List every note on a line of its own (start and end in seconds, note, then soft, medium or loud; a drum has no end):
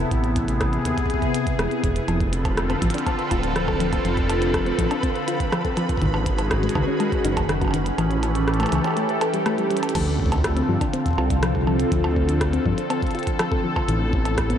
0.00 2.04 C3 medium
0.00 2.04 B3 medium
0.00 2.04 E4 medium
0.11 0.79 A1 loud
0.11 2.06 G#4 medium
0.11 kick loud
0.11 closed hi-hat medium
0.24 closed hi-hat soft
0.36 kick loud
0.36 closed hi-hat medium
0.48 closed hi-hat soft
0.61 kick loud
0.61 cross-stick loud
0.61 closed hi-hat medium
0.73 closed hi-hat soft
0.85 0.93 D#2 medium
0.85 closed hi-hat medium
0.98 kick loud
0.98 closed hi-hat medium
1.06 kick medium
1.10 closed hi-hat soft
1.14 kick medium
1.22 kick loud
1.22 closed hi-hat soft
1.34 closed hi-hat medium
1.47 kick loud
1.47 closed hi-hat soft
1.59 1.67 E1 medium
1.59 cross-stick loud
1.59 closed hi-hat medium
1.71 closed hi-hat soft
1.84 2.00 E1 medium
1.84 kick loud
1.84 closed hi-hat medium
1.96 closed hi-hat soft
2.08 2.75 F1 loud
2.08 5.98 D3 medium
2.08 2.17 F3 medium
2.08 5.98 C4 medium
2.08 5.98 F4 medium
2.08 5.98 A4 medium
2.08 9.96 B4 medium
2.08 closed hi-hat medium
2.08 percussion blips medium
2.20 kick loud
2.20 closed hi-hat soft
2.33 closed hi-hat medium
2.45 kick loud
2.45 closed hi-hat soft
2.45 percussion blips medium
2.57 cross-stick loud
2.57 closed hi-hat medium
2.70 2.79 C4 medium
2.70 closed hi-hat soft
2.70 percussion blips medium
2.82 2.90 A1 medium
2.82 2.94 F3 loud
2.82 kick loud
2.82 closed hi-hat medium
2.90 closed hi-hat medium
2.94 3.00 D4 medium
2.94 closed hi-hat soft
2.98 closed hi-hat medium
3.06 3.16 C4 medium
3.06 kick loud
3.06 closed hi-hat soft
3.06 percussion blips medium
3.19 closed hi-hat soft
3.31 3.98 D1 medium
3.31 3.43 F4 medium
3.31 kick loud
3.31 closed hi-hat medium
3.31 percussion blips medium
3.43 closed hi-hat soft
3.56 3.67 F3 medium
3.56 cross-stick loud
3.56 closed hi-hat medium
3.68 3.77 A4 medium
3.68 kick loud
3.68 percussion blips medium
3.80 3.92 F3 loud
3.80 closed hi-hat medium
3.93 kick loud
3.93 closed hi-hat medium
3.93 percussion blips soft
4.05 4.72 F1 loud
4.05 4.14 F3 medium
4.05 closed hi-hat medium
4.17 kick loud
4.17 closed hi-hat soft
4.30 closed hi-hat medium
4.30 percussion blips medium
4.42 closed hi-hat medium
4.54 kick loud
4.54 cross-stick loud
4.54 closed hi-hat medium
4.54 percussion blips medium
4.66 4.76 C4 medium
4.66 closed hi-hat soft
4.79 4.87 A1 medium
4.79 4.90 F3 loud
4.79 kick loud
4.79 closed hi-hat medium
4.91 4.97 D4 medium
4.91 closed hi-hat soft
4.91 percussion blips medium
5.03 5.12 C4 medium
5.03 kick loud
5.03 closed hi-hat soft
5.16 closed hi-hat soft
5.28 5.40 F4 medium
5.28 closed hi-hat medium
5.40 kick loud
5.40 closed hi-hat medium
5.52 5.64 F3 medium
5.52 cross-stick loud
5.52 closed hi-hat soft
5.52 percussion blips medium
5.65 5.74 A4 medium
5.65 kick loud
5.65 closed hi-hat soft
5.77 5.89 F3 loud
5.77 closed hi-hat medium
5.77 percussion blips soft
5.89 kick loud
5.89 closed hi-hat soft
5.97 7.96 D#3 medium
5.97 9.91 C#4 medium
5.97 7.96 F#4 medium
5.97 7.96 G#4 medium
5.97 kick medium
6.02 6.69 G#1 medium
6.02 6.11 D#3 medium
6.02 closed hi-hat medium
6.06 kick medium
6.14 percussion blips medium
6.26 kick loud
6.26 closed hi-hat medium
6.39 closed hi-hat soft
6.39 percussion blips soft
6.51 kick loud
6.51 cross-stick loud
6.51 closed hi-hat medium
6.63 6.72 G#3 medium
6.63 closed hi-hat soft
6.69 closed hi-hat medium
6.75 6.84 C#2 medium
6.75 6.87 D#3 loud
6.75 kick loud
6.75 percussion blips medium
6.88 6.93 C#4 medium
7.00 7.09 G#3 medium
7.00 closed hi-hat soft
7.00 percussion blips soft
7.12 kick loud
7.12 closed hi-hat soft
7.25 7.92 F#1 medium
7.25 7.36 D#4 medium
7.25 closed hi-hat medium
7.37 kick loud
7.37 closed hi-hat soft
7.37 percussion blips medium
7.49 7.61 D#3 medium
7.49 cross-stick loud
7.49 closed hi-hat medium
7.61 7.71 F#4 medium
7.61 kick loud
7.61 closed hi-hat soft
7.61 percussion blips soft
7.65 percussion blips soft
7.68 percussion blips soft
7.71 7.85 D#3 loud
7.71 closed hi-hat medium
7.71 percussion blips soft
7.86 closed hi-hat medium
7.98 8.66 A1 loud
7.98 8.08 E3 medium
7.98 9.93 E3 medium
7.98 9.93 G4 medium
7.98 9.93 A4 medium
7.98 closed hi-hat medium
7.98 percussion blips medium
8.11 closed hi-hat soft
8.23 closed hi-hat medium
8.23 percussion blips medium
8.35 closed hi-hat soft
8.48 cross-stick loud
8.48 closed hi-hat soft
8.54 closed hi-hat soft
8.60 8.69 A3 medium
8.60 closed hi-hat soft
8.60 percussion blips medium
8.63 closed hi-hat soft
8.63 percussion blips medium
8.66 percussion blips medium
8.69 8.80 C#2 medium
8.69 closed hi-hat medium
8.69 percussion blips soft
8.72 8.84 E3 loud
8.72 percussion blips soft
8.75 percussion blips soft
8.78 percussion blips soft
8.81 8.90 C#4 medium
8.81 closed hi-hat medium
8.81 percussion blips soft
8.84 percussion blips medium
8.88 percussion blips soft
8.91 percussion blips soft
8.94 9.06 A3 medium
8.94 closed hi-hat soft
8.94 percussion blips soft
8.97 percussion blips soft
9.00 percussion blips soft
9.03 percussion blips soft
9.06 closed hi-hat soft
9.06 percussion blips soft
9.21 9.31 A4 medium
9.21 closed hi-hat medium
9.21 percussion blips medium
9.34 9.45 G3 medium
9.34 closed hi-hat medium
9.46 9.55 A3 loud
9.46 cross-stick loud
9.46 closed hi-hat medium
9.46 percussion blips medium
9.58 9.69 G3 medium
9.58 closed hi-hat soft
9.71 9.80 G3 medium
9.71 closed hi-hat medium
9.77 closed hi-hat medium
9.83 closed hi-hat medium
9.83 percussion blips medium
9.89 closed hi-hat medium
9.95 10.62 D2 loud
9.95 13.85 D3 medium
9.95 10.04 F3 medium
9.95 13.85 C4 medium
9.95 13.85 F4 medium
9.95 14.58 A4 medium
9.95 kick loud
9.95 closed hi-hat medium
9.95 crash loud
9.95 percussion blips medium
10.20 kick loud
10.26 kick medium
10.32 kick medium
10.32 closed hi-hat medium
10.32 percussion blips medium
10.38 kick medium
10.44 kick loud
10.44 cross-stick loud
10.44 closed hi-hat medium
10.57 10.66 C4 medium
10.57 closed hi-hat soft
10.69 10.77 G2 medium
10.69 10.81 F3 loud
10.81 10.87 D4 medium
10.81 kick loud
10.81 closed hi-hat medium
10.81 percussion blips medium
10.93 11.03 C4 medium
10.93 closed hi-hat medium
11.06 kick loud
11.06 closed hi-hat soft
11.08 kick medium
11.11 kick medium
11.13 kick medium
11.16 11.85 C2 medium
11.16 11.30 F4 medium
11.16 kick soft
11.16 percussion blips medium
11.30 kick loud
11.30 closed hi-hat medium
11.43 11.54 F3 medium
11.43 cross-stick loud
11.43 closed hi-hat medium
11.55 11.64 A4 medium
11.55 kick loud
11.67 11.79 F3 loud
11.67 percussion blips medium
11.80 closed hi-hat medium
11.92 12.59 D2 loud
11.92 12.01 F3 medium
11.92 kick loud
11.92 closed hi-hat medium
12.04 percussion blips medium
12.16 kick loud
12.29 closed hi-hat medium
12.41 kick loud
12.41 cross-stick loud
12.41 closed hi-hat medium
12.53 12.63 C4 medium
12.53 closed hi-hat soft
12.66 12.74 G2 medium
12.66 12.77 F3 loud
12.66 kick loud
12.78 12.83 D4 medium
12.78 closed hi-hat medium
12.90 12.99 C4 medium
12.90 closed hi-hat medium
12.90 percussion blips medium
13.02 kick loud
13.02 closed hi-hat soft
13.07 closed hi-hat soft
13.11 closed hi-hat soft
13.15 13.26 F4 medium
13.15 closed hi-hat soft
13.19 closed hi-hat soft
13.23 closed hi-hat soft
13.27 kick loud
13.27 closed hi-hat medium
13.39 13.51 F3 medium
13.39 cross-stick loud
13.39 closed hi-hat medium
13.39 percussion blips medium
13.52 13.61 A4 medium
13.52 kick loud
13.64 13.76 F3 loud
13.76 kick loud
13.76 percussion blips medium
13.88 14.56 A1 loud
13.88 14.58 C3 medium
13.88 13.98 E3 medium
13.88 14.58 B3 medium
13.88 14.58 E4 medium
13.88 closed hi-hat medium
14.13 kick loud
14.25 closed hi-hat medium
14.25 percussion blips medium
14.38 kick loud
14.38 cross-stick loud
14.38 closed hi-hat medium
14.50 14.58 B3 medium
14.50 closed hi-hat soft